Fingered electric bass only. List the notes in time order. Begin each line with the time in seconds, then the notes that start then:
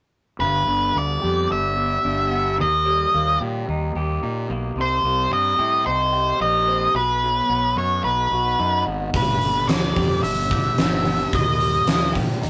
0.39 G1
0.67 G1
0.95 D2
1.23 F2
1.51 G1
2.05 G1
2.60 D#2
3.14 D#2
3.40 A#2
3.68 D#2
3.95 D#2
4.23 A#2
4.50 B1
4.76 C2
5.03 C2
5.31 G2
5.59 A2
5.86 C2
6.40 A#1
6.94 B1
7.49 B1
7.76 F#2
8.04 B1
8.31 B1
8.60 F#2
8.87 G#1
9.14 G1
9.43 G1
9.70 D2
9.96 F2
10.24 G1
10.80 G1
11.33 D#2
11.89 D#2
12.16 A#2
12.44 D#2